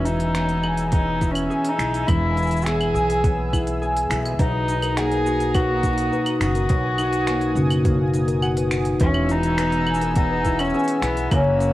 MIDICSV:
0, 0, Header, 1, 7, 480
1, 0, Start_track
1, 0, Tempo, 576923
1, 1731, Time_signature, 4, 2, 24, 8
1, 9759, End_track
2, 0, Start_track
2, 0, Title_t, "Analog synth pad"
2, 0, Program_c, 0, 89
2, 0, Note_on_c, 0, 80, 72
2, 0, Note_on_c, 0, 88, 93
2, 3619, Note_off_c, 0, 80, 0
2, 3619, Note_off_c, 0, 88, 0
2, 3647, Note_on_c, 0, 87, 82
2, 3649, Note_on_c, 0, 82, 73
2, 5551, Note_off_c, 0, 82, 0
2, 5576, Note_on_c, 0, 80, 68
2, 7456, Note_off_c, 0, 87, 0
2, 7475, Note_off_c, 0, 80, 0
2, 7483, Note_on_c, 0, 88, 85
2, 7485, Note_on_c, 0, 59, 86
2, 7486, Note_on_c, 0, 80, 74
2, 9388, Note_off_c, 0, 88, 0
2, 9389, Note_off_c, 0, 59, 0
2, 9389, Note_off_c, 0, 80, 0
2, 9414, Note_on_c, 0, 78, 75
2, 9417, Note_on_c, 0, 70, 80
2, 9417, Note_on_c, 0, 88, 89
2, 9759, Note_off_c, 0, 70, 0
2, 9759, Note_off_c, 0, 78, 0
2, 9759, Note_off_c, 0, 88, 0
2, 9759, End_track
3, 0, Start_track
3, 0, Title_t, "Music box"
3, 0, Program_c, 1, 10
3, 3662, Note_on_c, 1, 71, 79
3, 3725, Note_off_c, 1, 71, 0
3, 4016, Note_on_c, 1, 70, 72
3, 4127, Note_off_c, 1, 70, 0
3, 4137, Note_on_c, 1, 78, 108
3, 4203, Note_off_c, 1, 78, 0
3, 4260, Note_on_c, 1, 71, 74
3, 4324, Note_off_c, 1, 71, 0
3, 4615, Note_on_c, 1, 71, 81
3, 4727, Note_off_c, 1, 71, 0
3, 5098, Note_on_c, 1, 71, 80
3, 5163, Note_off_c, 1, 71, 0
3, 5453, Note_on_c, 1, 70, 75
3, 5566, Note_off_c, 1, 70, 0
3, 5574, Note_on_c, 1, 78, 102
3, 5641, Note_off_c, 1, 78, 0
3, 5687, Note_on_c, 1, 71, 73
3, 5758, Note_off_c, 1, 71, 0
3, 6046, Note_on_c, 1, 71, 89
3, 6163, Note_off_c, 1, 71, 0
3, 6523, Note_on_c, 1, 71, 82
3, 6596, Note_off_c, 1, 71, 0
3, 6886, Note_on_c, 1, 70, 83
3, 7003, Note_off_c, 1, 70, 0
3, 7008, Note_on_c, 1, 78, 107
3, 7078, Note_off_c, 1, 78, 0
3, 7133, Note_on_c, 1, 71, 68
3, 7201, Note_off_c, 1, 71, 0
3, 7494, Note_on_c, 1, 71, 85
3, 7607, Note_off_c, 1, 71, 0
3, 7975, Note_on_c, 1, 71, 91
3, 8042, Note_off_c, 1, 71, 0
3, 8338, Note_on_c, 1, 70, 76
3, 8449, Note_off_c, 1, 70, 0
3, 8462, Note_on_c, 1, 78, 99
3, 8525, Note_off_c, 1, 78, 0
3, 8577, Note_on_c, 1, 71, 82
3, 8643, Note_off_c, 1, 71, 0
3, 8936, Note_on_c, 1, 71, 84
3, 9048, Note_off_c, 1, 71, 0
3, 9418, Note_on_c, 1, 70, 80
3, 9483, Note_off_c, 1, 70, 0
3, 9759, End_track
4, 0, Start_track
4, 0, Title_t, "Cello"
4, 0, Program_c, 2, 42
4, 43, Note_on_c, 2, 63, 97
4, 755, Note_off_c, 2, 63, 0
4, 760, Note_on_c, 2, 63, 101
4, 1091, Note_on_c, 2, 61, 85
4, 1104, Note_off_c, 2, 63, 0
4, 1403, Note_on_c, 2, 63, 101
4, 1415, Note_off_c, 2, 61, 0
4, 1726, Note_on_c, 2, 64, 112
4, 1738, Note_off_c, 2, 63, 0
4, 2205, Note_on_c, 2, 68, 102
4, 2218, Note_off_c, 2, 64, 0
4, 2928, Note_off_c, 2, 68, 0
4, 3658, Note_on_c, 2, 63, 106
4, 4132, Note_on_c, 2, 68, 113
4, 4145, Note_off_c, 2, 63, 0
4, 4616, Note_on_c, 2, 66, 110
4, 4628, Note_off_c, 2, 68, 0
4, 5334, Note_off_c, 2, 66, 0
4, 5338, Note_on_c, 2, 66, 105
4, 6741, Note_off_c, 2, 66, 0
4, 7503, Note_on_c, 2, 61, 122
4, 7741, Note_on_c, 2, 63, 127
4, 7754, Note_off_c, 2, 61, 0
4, 8454, Note_off_c, 2, 63, 0
4, 8459, Note_on_c, 2, 63, 112
4, 8815, Note_on_c, 2, 61, 112
4, 8827, Note_off_c, 2, 63, 0
4, 9170, Note_off_c, 2, 61, 0
4, 9175, Note_on_c, 2, 59, 100
4, 9415, Note_on_c, 2, 58, 105
4, 9428, Note_off_c, 2, 59, 0
4, 9759, Note_off_c, 2, 58, 0
4, 9759, End_track
5, 0, Start_track
5, 0, Title_t, "Harp"
5, 0, Program_c, 3, 46
5, 0, Note_on_c, 3, 52, 87
5, 0, Note_on_c, 3, 58, 61
5, 0, Note_on_c, 3, 63, 64
5, 0, Note_on_c, 3, 66, 71
5, 46, Note_on_c, 3, 64, 59
5, 96, Note_off_c, 3, 63, 0
5, 285, Note_on_c, 3, 59, 68
5, 335, Note_off_c, 3, 58, 0
5, 529, Note_on_c, 3, 68, 71
5, 767, Note_off_c, 3, 59, 0
5, 770, Note_on_c, 3, 59, 69
5, 1005, Note_off_c, 3, 64, 0
5, 1008, Note_on_c, 3, 64, 60
5, 1244, Note_off_c, 3, 68, 0
5, 1247, Note_on_c, 3, 68, 74
5, 1354, Note_off_c, 3, 66, 0
5, 1487, Note_off_c, 3, 64, 0
5, 1490, Note_on_c, 3, 64, 63
5, 1716, Note_off_c, 3, 52, 0
5, 1726, Note_on_c, 3, 52, 82
5, 1963, Note_off_c, 3, 64, 0
5, 1966, Note_on_c, 3, 64, 66
5, 2209, Note_off_c, 3, 59, 0
5, 2212, Note_on_c, 3, 59, 61
5, 2447, Note_off_c, 3, 68, 0
5, 2451, Note_on_c, 3, 68, 72
5, 2693, Note_off_c, 3, 59, 0
5, 2696, Note_on_c, 3, 59, 67
5, 2932, Note_off_c, 3, 64, 0
5, 2935, Note_on_c, 3, 64, 63
5, 3172, Note_off_c, 3, 68, 0
5, 3175, Note_on_c, 3, 68, 71
5, 3413, Note_off_c, 3, 64, 0
5, 3416, Note_on_c, 3, 64, 64
5, 3654, Note_on_c, 3, 47, 76
5, 3693, Note_off_c, 3, 52, 0
5, 3896, Note_on_c, 3, 63, 61
5, 3946, Note_off_c, 3, 64, 0
5, 4140, Note_on_c, 3, 58, 63
5, 4378, Note_on_c, 3, 66, 68
5, 4610, Note_off_c, 3, 58, 0
5, 4614, Note_on_c, 3, 58, 62
5, 4853, Note_off_c, 3, 63, 0
5, 4856, Note_on_c, 3, 63, 62
5, 5067, Note_off_c, 3, 68, 0
5, 5090, Note_off_c, 3, 66, 0
5, 5094, Note_on_c, 3, 66, 76
5, 5329, Note_off_c, 3, 63, 0
5, 5332, Note_on_c, 3, 63, 64
5, 5561, Note_off_c, 3, 47, 0
5, 5571, Note_on_c, 3, 47, 88
5, 5808, Note_off_c, 3, 63, 0
5, 5812, Note_on_c, 3, 63, 68
5, 6051, Note_off_c, 3, 58, 0
5, 6054, Note_on_c, 3, 58, 63
5, 6294, Note_off_c, 3, 66, 0
5, 6297, Note_on_c, 3, 66, 66
5, 6530, Note_off_c, 3, 58, 0
5, 6534, Note_on_c, 3, 58, 66
5, 6767, Note_off_c, 3, 63, 0
5, 6771, Note_on_c, 3, 63, 62
5, 7004, Note_off_c, 3, 66, 0
5, 7008, Note_on_c, 3, 66, 67
5, 7089, Note_off_c, 3, 59, 0
5, 7250, Note_off_c, 3, 63, 0
5, 7254, Note_on_c, 3, 63, 62
5, 7491, Note_on_c, 3, 52, 82
5, 7533, Note_off_c, 3, 47, 0
5, 7730, Note_on_c, 3, 64, 64
5, 7780, Note_off_c, 3, 63, 0
5, 7971, Note_on_c, 3, 59, 61
5, 8021, Note_off_c, 3, 58, 0
5, 8212, Note_on_c, 3, 68, 66
5, 8453, Note_off_c, 3, 59, 0
5, 8456, Note_on_c, 3, 59, 65
5, 8690, Note_off_c, 3, 64, 0
5, 8694, Note_on_c, 3, 64, 65
5, 8932, Note_off_c, 3, 68, 0
5, 8935, Note_on_c, 3, 68, 75
5, 9035, Note_off_c, 3, 66, 0
5, 9168, Note_off_c, 3, 64, 0
5, 9171, Note_on_c, 3, 64, 64
5, 9413, Note_on_c, 3, 42, 82
5, 9651, Note_on_c, 3, 61, 64
5, 9759, Note_off_c, 3, 42, 0
5, 9759, Note_off_c, 3, 52, 0
5, 9759, Note_off_c, 3, 59, 0
5, 9759, Note_off_c, 3, 61, 0
5, 9759, Note_off_c, 3, 64, 0
5, 9759, Note_off_c, 3, 68, 0
5, 9759, End_track
6, 0, Start_track
6, 0, Title_t, "Upright bass"
6, 0, Program_c, 4, 32
6, 0, Note_on_c, 4, 28, 95
6, 1215, Note_off_c, 4, 28, 0
6, 1484, Note_on_c, 4, 35, 83
6, 1684, Note_off_c, 4, 35, 0
6, 1733, Note_on_c, 4, 28, 101
6, 2417, Note_off_c, 4, 28, 0
6, 2446, Note_on_c, 4, 35, 80
6, 3405, Note_off_c, 4, 35, 0
6, 3410, Note_on_c, 4, 35, 90
6, 3607, Note_off_c, 4, 35, 0
6, 3655, Note_on_c, 4, 35, 96
6, 5058, Note_off_c, 4, 35, 0
6, 5329, Note_on_c, 4, 30, 82
6, 5527, Note_off_c, 4, 30, 0
6, 5573, Note_on_c, 4, 35, 97
6, 6257, Note_off_c, 4, 35, 0
6, 6285, Note_on_c, 4, 30, 88
6, 7453, Note_off_c, 4, 30, 0
6, 7492, Note_on_c, 4, 28, 96
6, 8897, Note_off_c, 4, 28, 0
6, 9165, Note_on_c, 4, 35, 77
6, 9365, Note_off_c, 4, 35, 0
6, 9413, Note_on_c, 4, 30, 101
6, 9759, Note_off_c, 4, 30, 0
6, 9759, End_track
7, 0, Start_track
7, 0, Title_t, "Drums"
7, 45, Note_on_c, 9, 46, 31
7, 50, Note_on_c, 9, 69, 88
7, 128, Note_off_c, 9, 46, 0
7, 133, Note_off_c, 9, 69, 0
7, 165, Note_on_c, 9, 46, 45
7, 249, Note_off_c, 9, 46, 0
7, 289, Note_on_c, 9, 26, 74
7, 289, Note_on_c, 9, 46, 54
7, 294, Note_on_c, 9, 69, 32
7, 372, Note_off_c, 9, 26, 0
7, 372, Note_off_c, 9, 46, 0
7, 377, Note_off_c, 9, 69, 0
7, 405, Note_on_c, 9, 46, 28
7, 488, Note_off_c, 9, 46, 0
7, 528, Note_on_c, 9, 75, 73
7, 612, Note_off_c, 9, 75, 0
7, 645, Note_on_c, 9, 46, 44
7, 650, Note_on_c, 9, 69, 43
7, 728, Note_off_c, 9, 46, 0
7, 733, Note_off_c, 9, 69, 0
7, 765, Note_on_c, 9, 46, 55
7, 771, Note_on_c, 9, 36, 126
7, 848, Note_off_c, 9, 46, 0
7, 854, Note_off_c, 9, 36, 0
7, 1008, Note_on_c, 9, 46, 30
7, 1010, Note_on_c, 9, 36, 68
7, 1014, Note_on_c, 9, 69, 79
7, 1092, Note_off_c, 9, 46, 0
7, 1093, Note_off_c, 9, 36, 0
7, 1097, Note_off_c, 9, 69, 0
7, 1125, Note_on_c, 9, 46, 41
7, 1125, Note_on_c, 9, 75, 67
7, 1130, Note_on_c, 9, 69, 46
7, 1208, Note_off_c, 9, 46, 0
7, 1208, Note_off_c, 9, 75, 0
7, 1213, Note_off_c, 9, 69, 0
7, 1255, Note_on_c, 9, 69, 33
7, 1338, Note_off_c, 9, 69, 0
7, 1368, Note_on_c, 9, 46, 56
7, 1451, Note_off_c, 9, 46, 0
7, 1490, Note_on_c, 9, 26, 74
7, 1490, Note_on_c, 9, 46, 47
7, 1496, Note_on_c, 9, 69, 75
7, 1573, Note_off_c, 9, 26, 0
7, 1573, Note_off_c, 9, 46, 0
7, 1579, Note_off_c, 9, 69, 0
7, 1614, Note_on_c, 9, 46, 43
7, 1620, Note_on_c, 9, 69, 45
7, 1698, Note_off_c, 9, 46, 0
7, 1703, Note_off_c, 9, 69, 0
7, 1731, Note_on_c, 9, 36, 118
7, 1732, Note_on_c, 9, 46, 55
7, 1732, Note_on_c, 9, 75, 77
7, 1737, Note_on_c, 9, 69, 36
7, 1815, Note_off_c, 9, 36, 0
7, 1815, Note_off_c, 9, 46, 0
7, 1815, Note_off_c, 9, 75, 0
7, 1820, Note_off_c, 9, 69, 0
7, 1974, Note_on_c, 9, 46, 29
7, 1980, Note_on_c, 9, 69, 39
7, 2018, Note_off_c, 9, 69, 0
7, 2018, Note_on_c, 9, 69, 46
7, 2056, Note_off_c, 9, 69, 0
7, 2056, Note_on_c, 9, 69, 49
7, 2057, Note_off_c, 9, 46, 0
7, 2089, Note_on_c, 9, 46, 40
7, 2095, Note_off_c, 9, 69, 0
7, 2095, Note_on_c, 9, 69, 57
7, 2136, Note_off_c, 9, 69, 0
7, 2136, Note_on_c, 9, 69, 61
7, 2173, Note_off_c, 9, 46, 0
7, 2180, Note_off_c, 9, 69, 0
7, 2180, Note_on_c, 9, 69, 66
7, 2217, Note_on_c, 9, 26, 76
7, 2217, Note_on_c, 9, 46, 50
7, 2263, Note_off_c, 9, 69, 0
7, 2300, Note_off_c, 9, 26, 0
7, 2300, Note_off_c, 9, 46, 0
7, 2336, Note_on_c, 9, 46, 28
7, 2336, Note_on_c, 9, 75, 78
7, 2419, Note_off_c, 9, 46, 0
7, 2419, Note_off_c, 9, 75, 0
7, 2460, Note_on_c, 9, 69, 82
7, 2543, Note_off_c, 9, 69, 0
7, 2578, Note_on_c, 9, 46, 41
7, 2583, Note_on_c, 9, 69, 42
7, 2661, Note_off_c, 9, 46, 0
7, 2666, Note_off_c, 9, 69, 0
7, 2695, Note_on_c, 9, 36, 121
7, 2696, Note_on_c, 9, 46, 51
7, 2702, Note_on_c, 9, 69, 33
7, 2778, Note_off_c, 9, 36, 0
7, 2779, Note_off_c, 9, 46, 0
7, 2785, Note_off_c, 9, 69, 0
7, 2936, Note_on_c, 9, 36, 67
7, 2939, Note_on_c, 9, 46, 30
7, 2939, Note_on_c, 9, 75, 75
7, 2944, Note_on_c, 9, 69, 88
7, 3019, Note_off_c, 9, 36, 0
7, 3022, Note_off_c, 9, 46, 0
7, 3022, Note_off_c, 9, 75, 0
7, 3027, Note_off_c, 9, 69, 0
7, 3053, Note_on_c, 9, 46, 43
7, 3059, Note_on_c, 9, 69, 42
7, 3137, Note_off_c, 9, 46, 0
7, 3142, Note_off_c, 9, 69, 0
7, 3182, Note_on_c, 9, 69, 32
7, 3265, Note_off_c, 9, 69, 0
7, 3299, Note_on_c, 9, 46, 56
7, 3382, Note_off_c, 9, 46, 0
7, 3416, Note_on_c, 9, 26, 78
7, 3416, Note_on_c, 9, 46, 48
7, 3422, Note_on_c, 9, 69, 75
7, 3500, Note_off_c, 9, 26, 0
7, 3500, Note_off_c, 9, 46, 0
7, 3505, Note_off_c, 9, 69, 0
7, 3540, Note_on_c, 9, 46, 40
7, 3540, Note_on_c, 9, 75, 70
7, 3623, Note_off_c, 9, 46, 0
7, 3623, Note_off_c, 9, 75, 0
7, 3655, Note_on_c, 9, 46, 54
7, 3656, Note_on_c, 9, 36, 121
7, 3660, Note_on_c, 9, 69, 33
7, 3738, Note_off_c, 9, 46, 0
7, 3739, Note_off_c, 9, 36, 0
7, 3743, Note_off_c, 9, 69, 0
7, 3896, Note_on_c, 9, 46, 33
7, 3901, Note_on_c, 9, 69, 81
7, 3979, Note_off_c, 9, 46, 0
7, 3985, Note_off_c, 9, 69, 0
7, 4014, Note_on_c, 9, 46, 43
7, 4014, Note_on_c, 9, 75, 78
7, 4019, Note_on_c, 9, 69, 44
7, 4097, Note_off_c, 9, 46, 0
7, 4097, Note_off_c, 9, 75, 0
7, 4102, Note_off_c, 9, 69, 0
7, 4136, Note_on_c, 9, 26, 69
7, 4136, Note_on_c, 9, 46, 54
7, 4141, Note_on_c, 9, 69, 33
7, 4219, Note_off_c, 9, 26, 0
7, 4219, Note_off_c, 9, 46, 0
7, 4224, Note_off_c, 9, 69, 0
7, 4255, Note_on_c, 9, 46, 29
7, 4338, Note_off_c, 9, 46, 0
7, 4379, Note_on_c, 9, 69, 87
7, 4463, Note_off_c, 9, 69, 0
7, 4495, Note_on_c, 9, 46, 42
7, 4501, Note_on_c, 9, 69, 44
7, 4578, Note_off_c, 9, 46, 0
7, 4584, Note_off_c, 9, 69, 0
7, 4614, Note_on_c, 9, 46, 53
7, 4614, Note_on_c, 9, 75, 80
7, 4616, Note_on_c, 9, 36, 121
7, 4619, Note_on_c, 9, 69, 36
7, 4697, Note_off_c, 9, 46, 0
7, 4697, Note_off_c, 9, 75, 0
7, 4700, Note_off_c, 9, 36, 0
7, 4702, Note_off_c, 9, 69, 0
7, 4852, Note_on_c, 9, 46, 32
7, 4855, Note_on_c, 9, 36, 66
7, 4858, Note_on_c, 9, 69, 82
7, 4936, Note_off_c, 9, 46, 0
7, 4938, Note_off_c, 9, 36, 0
7, 4941, Note_off_c, 9, 69, 0
7, 4973, Note_on_c, 9, 46, 42
7, 4978, Note_on_c, 9, 69, 43
7, 5056, Note_off_c, 9, 46, 0
7, 5061, Note_off_c, 9, 69, 0
7, 5098, Note_on_c, 9, 69, 32
7, 5182, Note_off_c, 9, 69, 0
7, 5209, Note_on_c, 9, 46, 54
7, 5209, Note_on_c, 9, 75, 82
7, 5292, Note_off_c, 9, 46, 0
7, 5292, Note_off_c, 9, 75, 0
7, 5332, Note_on_c, 9, 26, 75
7, 5332, Note_on_c, 9, 46, 50
7, 5337, Note_on_c, 9, 69, 76
7, 5415, Note_off_c, 9, 26, 0
7, 5415, Note_off_c, 9, 46, 0
7, 5420, Note_off_c, 9, 69, 0
7, 5450, Note_on_c, 9, 46, 40
7, 5455, Note_on_c, 9, 69, 45
7, 5533, Note_off_c, 9, 46, 0
7, 5538, Note_off_c, 9, 69, 0
7, 5567, Note_on_c, 9, 46, 55
7, 5572, Note_on_c, 9, 69, 33
7, 5573, Note_on_c, 9, 36, 108
7, 5650, Note_off_c, 9, 46, 0
7, 5656, Note_off_c, 9, 69, 0
7, 5657, Note_off_c, 9, 36, 0
7, 5809, Note_on_c, 9, 46, 32
7, 5809, Note_on_c, 9, 75, 90
7, 5815, Note_on_c, 9, 69, 78
7, 5892, Note_off_c, 9, 46, 0
7, 5892, Note_off_c, 9, 75, 0
7, 5898, Note_off_c, 9, 69, 0
7, 5930, Note_on_c, 9, 46, 42
7, 5935, Note_on_c, 9, 69, 43
7, 6013, Note_off_c, 9, 46, 0
7, 6018, Note_off_c, 9, 69, 0
7, 6051, Note_on_c, 9, 26, 73
7, 6051, Note_on_c, 9, 46, 50
7, 6056, Note_on_c, 9, 69, 29
7, 6134, Note_off_c, 9, 26, 0
7, 6134, Note_off_c, 9, 46, 0
7, 6139, Note_off_c, 9, 69, 0
7, 6167, Note_on_c, 9, 46, 29
7, 6251, Note_off_c, 9, 46, 0
7, 6292, Note_on_c, 9, 69, 74
7, 6375, Note_off_c, 9, 69, 0
7, 6411, Note_on_c, 9, 46, 43
7, 6411, Note_on_c, 9, 75, 87
7, 6416, Note_on_c, 9, 69, 45
7, 6494, Note_off_c, 9, 46, 0
7, 6494, Note_off_c, 9, 75, 0
7, 6499, Note_off_c, 9, 69, 0
7, 6532, Note_on_c, 9, 46, 51
7, 6533, Note_on_c, 9, 36, 116
7, 6537, Note_on_c, 9, 69, 31
7, 6615, Note_off_c, 9, 46, 0
7, 6616, Note_off_c, 9, 36, 0
7, 6620, Note_off_c, 9, 69, 0
7, 6770, Note_on_c, 9, 46, 31
7, 6775, Note_on_c, 9, 69, 74
7, 6853, Note_off_c, 9, 46, 0
7, 6859, Note_off_c, 9, 69, 0
7, 6890, Note_on_c, 9, 46, 43
7, 6895, Note_on_c, 9, 69, 43
7, 6973, Note_off_c, 9, 46, 0
7, 6978, Note_off_c, 9, 69, 0
7, 7009, Note_on_c, 9, 75, 86
7, 7015, Note_on_c, 9, 69, 30
7, 7092, Note_off_c, 9, 75, 0
7, 7098, Note_off_c, 9, 69, 0
7, 7130, Note_on_c, 9, 46, 59
7, 7213, Note_off_c, 9, 46, 0
7, 7247, Note_on_c, 9, 26, 74
7, 7247, Note_on_c, 9, 46, 50
7, 7253, Note_on_c, 9, 69, 74
7, 7331, Note_off_c, 9, 26, 0
7, 7331, Note_off_c, 9, 46, 0
7, 7336, Note_off_c, 9, 69, 0
7, 7363, Note_on_c, 9, 46, 42
7, 7369, Note_on_c, 9, 69, 41
7, 7447, Note_off_c, 9, 46, 0
7, 7452, Note_off_c, 9, 69, 0
7, 7485, Note_on_c, 9, 46, 54
7, 7490, Note_on_c, 9, 69, 32
7, 7494, Note_on_c, 9, 36, 120
7, 7568, Note_off_c, 9, 46, 0
7, 7574, Note_off_c, 9, 69, 0
7, 7577, Note_off_c, 9, 36, 0
7, 7606, Note_on_c, 9, 75, 83
7, 7690, Note_off_c, 9, 75, 0
7, 7729, Note_on_c, 9, 46, 33
7, 7734, Note_on_c, 9, 69, 78
7, 7812, Note_off_c, 9, 46, 0
7, 7818, Note_off_c, 9, 69, 0
7, 7848, Note_on_c, 9, 46, 49
7, 7853, Note_on_c, 9, 69, 41
7, 7931, Note_off_c, 9, 46, 0
7, 7936, Note_off_c, 9, 69, 0
7, 7970, Note_on_c, 9, 26, 77
7, 7970, Note_on_c, 9, 46, 59
7, 7975, Note_on_c, 9, 69, 31
7, 8053, Note_off_c, 9, 26, 0
7, 8053, Note_off_c, 9, 46, 0
7, 8058, Note_off_c, 9, 69, 0
7, 8089, Note_on_c, 9, 46, 32
7, 8172, Note_off_c, 9, 46, 0
7, 8209, Note_on_c, 9, 75, 81
7, 8274, Note_on_c, 9, 69, 75
7, 8292, Note_off_c, 9, 75, 0
7, 8332, Note_on_c, 9, 46, 45
7, 8337, Note_off_c, 9, 69, 0
7, 8337, Note_on_c, 9, 69, 44
7, 8415, Note_off_c, 9, 46, 0
7, 8420, Note_off_c, 9, 69, 0
7, 8449, Note_on_c, 9, 46, 58
7, 8454, Note_on_c, 9, 69, 32
7, 8456, Note_on_c, 9, 36, 118
7, 8532, Note_off_c, 9, 46, 0
7, 8537, Note_off_c, 9, 69, 0
7, 8539, Note_off_c, 9, 36, 0
7, 8690, Note_on_c, 9, 46, 31
7, 8694, Note_on_c, 9, 36, 59
7, 8695, Note_on_c, 9, 69, 78
7, 8773, Note_off_c, 9, 46, 0
7, 8778, Note_off_c, 9, 36, 0
7, 8778, Note_off_c, 9, 69, 0
7, 8811, Note_on_c, 9, 46, 45
7, 8811, Note_on_c, 9, 75, 83
7, 8816, Note_on_c, 9, 69, 19
7, 8854, Note_off_c, 9, 69, 0
7, 8854, Note_on_c, 9, 69, 22
7, 8894, Note_off_c, 9, 46, 0
7, 8894, Note_off_c, 9, 75, 0
7, 8899, Note_off_c, 9, 69, 0
7, 8899, Note_on_c, 9, 69, 25
7, 8937, Note_off_c, 9, 69, 0
7, 8937, Note_on_c, 9, 69, 30
7, 8977, Note_off_c, 9, 69, 0
7, 8977, Note_on_c, 9, 69, 33
7, 9015, Note_off_c, 9, 69, 0
7, 9015, Note_on_c, 9, 69, 35
7, 9049, Note_on_c, 9, 46, 62
7, 9099, Note_off_c, 9, 69, 0
7, 9132, Note_off_c, 9, 46, 0
7, 9171, Note_on_c, 9, 26, 76
7, 9171, Note_on_c, 9, 46, 50
7, 9176, Note_on_c, 9, 69, 72
7, 9254, Note_off_c, 9, 26, 0
7, 9254, Note_off_c, 9, 46, 0
7, 9259, Note_off_c, 9, 69, 0
7, 9292, Note_on_c, 9, 46, 43
7, 9298, Note_on_c, 9, 69, 43
7, 9375, Note_off_c, 9, 46, 0
7, 9381, Note_off_c, 9, 69, 0
7, 9413, Note_on_c, 9, 46, 57
7, 9413, Note_on_c, 9, 75, 82
7, 9414, Note_on_c, 9, 36, 108
7, 9418, Note_on_c, 9, 69, 33
7, 9496, Note_off_c, 9, 46, 0
7, 9496, Note_off_c, 9, 75, 0
7, 9498, Note_off_c, 9, 36, 0
7, 9502, Note_off_c, 9, 69, 0
7, 9655, Note_on_c, 9, 46, 33
7, 9661, Note_on_c, 9, 69, 82
7, 9739, Note_off_c, 9, 46, 0
7, 9744, Note_off_c, 9, 69, 0
7, 9759, End_track
0, 0, End_of_file